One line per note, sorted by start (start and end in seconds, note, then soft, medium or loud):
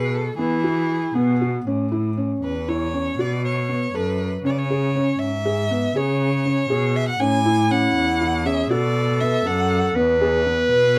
0.00 0.35 B2 medium
0.00 0.11 F#4 medium
0.00 0.21 G#4 medium
0.00 0.16 B4 medium
0.15 0.38 A4 medium
0.37 1.11 E3 medium
0.37 0.55 B3 medium
0.37 1.16 E4 medium
0.37 1.37 G#4 medium
0.64 0.98 F#4 medium
1.15 1.64 B2 medium
1.15 1.66 B3 medium
1.15 1.32 B3 medium
1.41 1.58 F#4 medium
1.67 2.39 A2 medium
1.67 1.83 C#4 medium
1.92 2.08 E4 medium
2.17 2.51 C#4 medium
2.43 3.15 E2 medium
2.43 2.70 B4 medium
2.68 2.85 E4 medium
2.68 3.22 C#5 medium
2.94 3.10 C#4 medium
3.19 3.90 B2 medium
3.19 3.52 F#4 medium
3.19 3.44 D5 medium
3.45 3.97 C#5 medium
3.69 3.85 B3 medium
3.94 4.42 F#2 medium
3.94 4.27 A4 medium
3.94 4.32 B4 medium
4.45 5.16 C#3 medium
4.45 4.61 C#4 medium
4.45 4.51 C#5 medium
4.50 4.60 D5 medium
4.58 5.20 C#5 medium
4.70 4.86 G#4 medium
4.95 5.28 C#4 medium
5.19 5.91 G#2 medium
5.19 5.98 E5 medium
5.45 5.62 G#4 medium
5.71 5.87 B3 medium
5.96 6.66 C#3 medium
5.96 6.28 G#4 medium
5.96 6.98 C#5 medium
6.45 6.61 C#4 medium
6.70 7.17 B2 medium
6.70 7.03 G#4 medium
6.96 7.08 E5 medium
7.09 7.22 F#5 medium
7.19 7.91 A2 medium
7.19 7.36 C#4 medium
7.19 8.47 E4 medium
7.19 7.73 G#5 loud
7.46 7.62 E4 medium
7.71 8.03 C#4 medium
7.71 8.47 F#5 loud
7.96 8.67 E2 medium
8.21 8.37 E4 medium
8.45 8.62 C#4 medium
8.45 8.72 G#4 medium
8.45 8.71 E5 medium
8.70 9.42 B2 medium
8.70 9.03 F#4 medium
8.70 9.97 A4 medium
8.70 9.22 D5 medium
9.21 9.37 B3 medium
9.21 9.48 E5 medium
9.46 9.94 F#2 medium
9.46 9.79 A4 medium
9.46 9.84 F#5 medium
9.96 10.68 E2 medium
9.96 10.13 B3 medium
9.96 10.99 B4 loud
10.21 10.38 G#4 medium
10.46 10.80 B3 medium
10.72 10.99 B2 medium
10.72 10.98 B4 medium